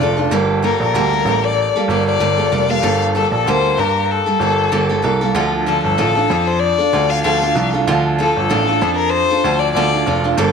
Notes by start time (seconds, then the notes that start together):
Already playing: D5
0.00 F1 F3 D4 F4 A4
0.17 D4 F4 A4
0.31 G1 G2 D3 G3 A#3 G4 A4
0.63 G3 A#3 G4 A4 A#4
0.80 A#1 A#4
0.94 D2 G2 D3 G3 A#3 G4 A4
1.13 G3 A#3 G4 A4
1.25 A1 G3 A#3 G4 A4
1.44 D5
1.76 G3 A#3 G4 A4
1.88 G1 G3 A#3 G4 A4 D5
2.07 D5
2.20 G1 G2 D3 G3 A#3 G4 A4
2.37 G3 A#3 G4 A4
2.51 F1 G3 A#3 G4 A4
2.68 G3 A#3 G4 A4 F5
2.82 G1 G2 D3 G3 A#3 G4 A4
3.15 G3 A#3 G4 A4
3.31 A#1 A4
3.46 D2 G2 D3 G3 A#3 G4 A4 C5
3.77 G2 G3 A#3 G4 A#4
4.12 A4
4.26 G3 A#3 G4 A4
4.39 G1 G3 A#3 G4 A4
4.72 G1 G2 D3 G3 A#3 G4 A4
4.89 G3 A#3 G4 A4
5.02 C2 G3 A#3 G4 A4
5.21 G3 A#3 G4 A4
5.34 D2 D3 F3 D4 F4 A4
5.66 F3 D4 F4 A4
5.83 G1 A4
5.98 A1 D3 F3 D4 F4 A4
6.15 D4 F4 A4
6.30 F2 F3 D4 F4 A4
6.47 C5
6.59 D5
6.78 D4 F4 A4
6.93 D2 F3 D4 F4 A4
7.10 F5
7.24 D2 D3 F3 D4 F4 A4 F5
7.42 D4 F4 A4
7.55 C2 F3 D4 F4 A4
7.73 D4 F4 A4
7.87 D2 D3 F3 D4 F4 A4
8.18 F3 D4 F4 A4
8.36 G1 A4
8.50 A1 D3 F3 D4 F4 A4
8.67 D4 F4 A4
8.81 F2 F3 D4 F4 A4
8.96 A#4
9.09 C5
9.30 D4 F4 A4
9.44 D2 F3 D4 F4 A4
9.59 D5
9.73 D2 D3 F3 D4 F4 A4 D5
9.93 D4 F4 A4
10.06 F1 F3 D4 F4 A4
10.24 D4 F4 A4
10.37 G1 G2 D3 G3 A#3 D4 A4